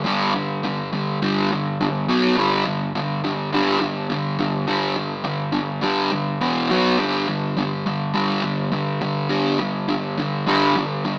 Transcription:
0.04 0.32 G2 medium
0.04 0.32 D3 medium
0.04 0.32 G3 medium
0.34 0.60 G2 medium
0.34 0.60 D3 medium
0.63 0.89 G2 medium
0.63 0.90 D3 medium
0.93 1.18 G2 medium
0.93 1.19 D3 medium
1.22 1.49 G2 medium
1.22 1.49 D3 medium
1.22 1.49 G3 medium
1.52 1.77 G2 medium
1.52 1.77 D3 medium
1.81 2.06 G2 medium
1.81 2.06 D3 medium
2.09 2.35 B2 medium
2.09 2.36 F#3 medium
2.09 2.36 B3 medium
2.37 2.64 G2 medium
2.37 2.64 D3 medium
2.37 2.65 G3 loud
2.66 2.92 G2 medium
2.66 2.92 D3 medium
2.95 3.21 G2 medium
2.95 3.21 D3 medium
3.24 3.50 G2 medium
3.24 3.50 D3 medium
3.53 3.79 G2 medium
3.53 3.79 D3 medium
3.53 3.80 G3 medium
3.80 4.07 G2 medium
3.80 4.07 D3 medium
4.10 4.36 G2 medium
4.10 4.36 D3 medium
4.39 4.65 G2 medium
4.39 4.65 D3 medium
4.67 4.94 G2 medium
4.67 4.95 D3 loud
4.67 4.96 G3 medium
4.95 5.22 G2 medium
4.95 5.23 D3 medium
5.24 5.51 G2 medium
5.24 5.51 D3 loud
5.52 5.80 G2 medium
5.52 5.80 D3 medium
5.82 6.10 G2 medium
5.82 6.11 D3 medium
5.82 6.11 G3 medium
6.11 6.38 G2 medium
6.11 6.39 D3 medium
6.41 6.69 E2 loud
6.41 6.69 B2 loud
6.41 6.69 E3 loud
6.70 6.98 B2 medium
6.70 6.98 F#3 loud
6.70 6.98 B3 medium
6.98 7.27 G2 medium
6.98 7.26 D3 medium
6.98 7.27 G3 medium
7.28 7.55 G2 medium
7.28 7.55 D3 medium
7.57 7.83 G2 medium
7.57 7.84 D3 medium
7.86 8.12 G2 medium
7.86 8.13 D3 medium
8.14 8.41 G2 medium
8.14 8.41 D3 medium
8.14 8.43 G3 medium
8.42 8.70 G2 medium
8.42 8.70 D3 medium
8.72 8.99 G2 medium
8.72 8.99 D3 medium
9.01 9.28 G2 medium
9.01 9.28 D3 medium
9.29 9.58 G2 medium
9.29 9.58 D3 medium
9.29 9.58 G3 medium
9.60 9.87 G2 medium
9.60 9.87 D3 medium
9.88 10.16 G2 medium
9.88 10.16 D3 medium
10.18 10.45 G2 medium
10.18 10.45 D3 medium
10.47 10.75 G2 medium
10.47 10.75 D3 medium
10.47 10.75 G3 medium
10.77 11.03 G2 medium
10.77 11.03 D3 medium
11.05 11.19 G2 medium
11.05 11.19 D3 medium

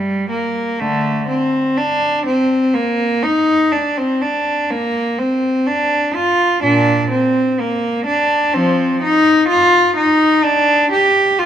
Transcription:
0.00 0.30 G3 medium
0.30 0.78 A#3 medium
0.80 1.24 D3 medium
0.80 1.28 A3 medium
1.28 1.75 C4 medium
1.77 2.25 D4 medium
2.26 2.73 C4 medium
2.74 3.23 A#3 medium
3.23 3.72 D#4 medium
3.72 3.96 D4 medium
3.98 4.21 C4 medium
4.22 4.69 D4 medium
4.71 5.18 A#3 medium
5.19 5.67 C4 medium
5.67 6.15 D4 medium
6.15 6.63 F4 medium
6.63 7.08 A#2 medium
6.63 7.10 D4 medium
7.11 7.57 C4 medium
7.59 8.06 A#3 medium
8.06 8.53 D4 medium
8.54 8.98 F3 medium
8.54 9.01 C4 medium
9.03 9.48 D#4 medium
9.49 9.95 F4 medium
9.96 10.43 D#4 medium
10.44 10.91 D4 medium
10.91 11.38 G4 medium
11.39 11.46 F4 medium

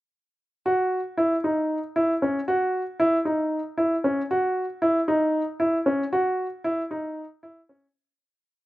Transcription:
0.66 0.99 F#4 medium
1.17 1.34 E4 medium
1.44 1.77 D#4 medium
1.96 2.13 E4 medium
2.22 2.39 C#4 medium
2.48 2.81 F#4 medium
3.00 3.16 E4 medium
3.25 3.59 D#4 medium
3.78 3.94 E4 medium
4.04 4.21 C#4 medium
4.31 4.64 F#4 medium
4.82 4.99 E4 medium
5.08 5.41 D#4 medium
5.60 5.76 E4 medium
5.86 6.03 C#4 medium
6.13 6.46 F#4 medium
6.64 6.81 E4 medium
6.91 7.24 D#4 medium
7.43 7.59 E4 medium
7.69 7.86 C#4 medium

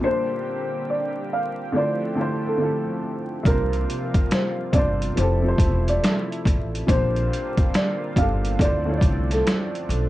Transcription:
0.01 1.46 A#2 medium
0.01 1.72 D3 medium
0.01 1.73 G3 medium
0.01 1.47 A#3 medium
0.01 1.72 A#3 medium
0.01 3.42 C4 medium
0.01 1.48 D4 medium
0.01 3.42 G4 medium
0.01 0.89 C5 loud
0.05 1.48 G4 medium
0.05 1.49 C5 medium
0.90 1.28 D5 medium
1.33 1.71 F5 medium
1.72 2.11 D3 medium
1.72 3.44 D3 medium
1.72 3.44 F3 medium
1.72 2.11 A3 medium
1.72 3.44 A3 medium
1.72 2.12 E4 medium
1.72 2.12 F4 medium
1.72 2.41 D5 medium
1.78 2.13 C5 medium
2.15 2.53 D3 medium
2.15 2.54 A3 medium
2.15 2.55 E4 medium
2.20 2.56 F4 medium
2.20 2.56 C5 medium
2.46 2.59 A4 medium
2.57 3.33 D3 medium
2.57 3.34 A3 medium
2.57 3.35 E4 medium
2.62 3.36 F4 medium
2.62 3.36 A4 medium
3.43 3.84 C2 loud
3.43 4.56 C3 medium
3.43 6.85 C3 medium
3.43 6.85 F3 medium
3.43 5.15 G3 medium
3.43 4.56 A#3 medium
3.43 5.15 A#3 medium
3.43 4.57 D4 medium
3.43 5.15 F4 medium
3.43 4.58 F4 medium
3.43 4.28 A#4 loud
3.43 kick loud
3.43 closed hi-hat medium
3.49 4.59 C5 medium
3.73 closed hi-hat soft
3.90 closed hi-hat medium
4.14 kick medium
4.14 closed hi-hat soft
4.31 4.70 C5 medium
4.31 snare loud
4.31 closed hi-hat medium
4.72 5.12 G1 medium
4.72 5.16 C3 medium
4.72 5.17 A#3 medium
4.72 5.18 D4 medium
4.72 5.18 F4 medium
4.72 5.17 D5 medium
4.72 kick medium
4.72 closed hi-hat medium
4.78 5.19 C5 medium
5.02 closed hi-hat soft
5.16 5.56 F1 medium
5.16 5.39 F3 medium
5.16 6.87 A3 medium
5.16 5.39 C4 medium
5.16 6.87 E4 medium
5.16 5.40 E4 medium
5.16 5.83 C5 medium
5.16 closed hi-hat medium
5.20 5.41 G4 medium
5.20 5.42 A4 medium
5.43 6.65 F3 medium
5.43 6.66 C4 medium
5.43 6.67 E4 medium
5.47 6.68 G4 medium
5.47 6.68 C5 medium
5.58 5.97 E1 medium
5.58 kick medium
5.58 closed hi-hat medium
5.88 6.85 D5 medium
5.88 closed hi-hat medium
6.04 snare loud
6.04 closed hi-hat medium
6.32 closed hi-hat soft
6.45 6.84 A1 loud
6.45 kick medium
6.45 closed hi-hat medium
6.75 closed hi-hat soft
6.87 7.27 A#1 loud
6.87 7.99 A#2 medium
6.87 10.09 D3 medium
6.87 8.58 G3 medium
6.87 8.58 A#3 medium
6.87 8.00 A#3 medium
6.87 10.09 C4 medium
6.87 8.00 D4 medium
6.87 8.58 F4 medium
6.87 7.70 C5 loud
6.87 kick loud
6.87 closed hi-hat medium
6.91 8.01 G4 medium
6.91 8.02 C5 medium
7.16 closed hi-hat soft
7.33 closed hi-hat medium
7.57 kick medium
7.57 closed hi-hat soft
7.74 8.13 D5 medium
7.74 snare loud
7.74 closed hi-hat medium
8.16 8.55 G1 medium
8.16 8.59 A#2 medium
8.16 8.60 A#3 medium
8.16 8.61 D4 medium
8.16 8.61 G4 medium
8.16 8.56 F5 medium
8.16 kick loud
8.16 closed hi-hat medium
8.21 8.62 A4 medium
8.45 closed hi-hat soft
8.59 8.98 D2 loud
8.59 8.82 D3 medium
8.59 10.09 F3 medium
8.59 10.09 A3 medium
8.59 8.82 A3 medium
8.59 10.09 D4 medium
8.59 8.83 E4 medium
8.59 8.84 F4 medium
8.59 9.27 D5 medium
8.59 kick medium
8.59 closed hi-hat medium
8.64 8.85 C5 medium
8.85 10.08 D3 medium
8.85 10.09 A3 medium
8.85 10.09 E4 medium
8.90 10.09 F4 medium
8.90 8.94 C#5 medium
8.97 10.09 D5 medium
9.01 9.40 C2 medium
9.01 kick loud
9.01 closed hi-hat medium
9.31 9.45 A4 medium
9.31 snare soft
9.31 closed hi-hat medium
9.47 snare loud
9.47 closed hi-hat medium
9.75 closed hi-hat soft
9.89 10.09 B1 medium
9.89 closed hi-hat medium

